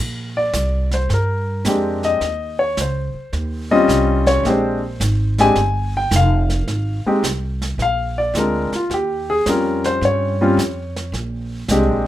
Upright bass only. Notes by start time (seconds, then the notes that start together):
Already playing: A#1
0.54 C2
1.09 G2
1.65 F2
2.21 D#2
2.77 C#2
3.14 muted upright bass stroke
3.33 D#2
3.88 C2
4.43 A#1
5.00 G#1
5.56 G1
6.11 F1
6.67 G#1
7.05 muted upright bass stroke
7.23 C2
7.78 A#1
8.34 D2
8.71 muted upright bass stroke
8.90 D#2
9.46 F2
10.01 G2
10.57 F2
11.12 A#1
11.69 C2
11.88 A#1